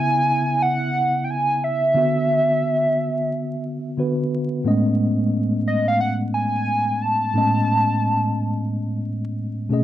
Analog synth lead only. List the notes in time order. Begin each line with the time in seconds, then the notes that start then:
Already playing: G#5
0.62 F#5
1.24 G5
1.30 G#5
1.64 E5
5.67 D#5
5.88 F5
6.00 F#5
6.34 G#5
7.02 A5